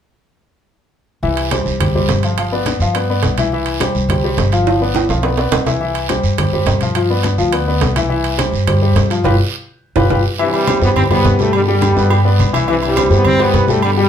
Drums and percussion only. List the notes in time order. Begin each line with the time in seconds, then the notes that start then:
1.23 high conga, long guiro
1.37 high conga, high timbale
1.51 high conga, high timbale, low timbale, short guiro
1.66 high conga, short guiro
1.80 high conga, low conga, high timbale, long guiro
1.95 high conga, low conga
2.09 high conga, high timbale, low timbale, short guiro
2.23 high timbale, short guiro
2.38 high conga, high timbale, long guiro
2.52 high conga
2.66 high conga, high timbale, low timbale, short guiro
2.80 short guiro
2.94 high conga, high timbale, long guiro
3.09 high conga
3.23 high conga, high timbale, low timbale, short guiro
3.37 high conga, high timbale, short guiro
3.52 high conga, long guiro
3.66 high conga, high timbale
3.80 high conga, high timbale, low timbale, short guiro
3.95 high conga, short guiro
4.09 high conga, low conga, high timbale, long guiro
4.23 high conga
4.37 high conga, high timbale, low timbale, short guiro
4.52 high timbale, short guiro
4.66 high conga, high timbale, long guiro
4.80 high conga
4.95 high conga, high timbale, short guiro
5.09 low timbale, short guiro
5.23 high conga, low timbale, long guiro
5.37 high conga, low timbale
5.52 high conga, low timbale, short guiro
5.66 high conga, low timbale, short guiro
5.81 high conga, long guiro
5.95 high conga, high timbale
6.09 high conga, high timbale, low timbale, short guiro
6.23 high conga, short guiro
6.38 high conga, low conga, high timbale, long guiro
6.53 high conga, low conga
6.66 high conga, high timbale, low timbale, short guiro
6.81 high conga, high timbale, short guiro
6.95 high conga, high timbale, long guiro
7.10 high conga
7.23 high conga, high timbale, low timbale, short guiro
7.38 short guiro
7.53 high conga, high timbale, long guiro
7.67 high conga
7.81 high conga, high timbale, low timbale, short guiro
7.96 high conga, high timbale, short guiro
8.10 high conga, long guiro
8.24 high conga, high timbale
8.39 high conga, high timbale, low timbale, short guiro
8.53 high conga, short guiro
8.67 high conga, low conga, high timbale, long guiro
8.82 high conga
8.96 high conga, high timbale, low timbale, short guiro
9.10 high timbale, short guiro
9.24 high conga, high timbale, long guiro
9.96 high conga, high timbale, long guiro
10.10 high conga, high timbale, long guiro
10.39 high conga, low agogo, long guiro
10.53 high conga, low agogo
10.67 high conga, low agogo, short guiro
10.82 high conga, short guiro
10.96 high conga, low conga, low agogo, long guiro
11.11 high conga, low conga, low agogo
11.25 high conga, low timbale, short guiro
11.39 high conga, short guiro
11.53 high conga, low agogo, long guiro
11.68 high conga
11.82 high conga, low agogo, short guiro
11.97 high conga, short guiro
12.10 high conga, low agogo, long guiro
12.26 high conga
12.39 high conga, low agogo, short guiro
12.54 high conga, low agogo, short guiro
12.68 high conga, low agogo, long guiro
12.82 high conga, low agogo
12.96 high conga, low agogo, short guiro
13.11 short guiro
13.25 high conga, low conga, low agogo, long guiro
13.39 high conga, low agogo
13.54 high conga, low timbale, short guiro
13.68 high conga, short guiro
13.82 high conga, low agogo, long guiro
13.96 high conga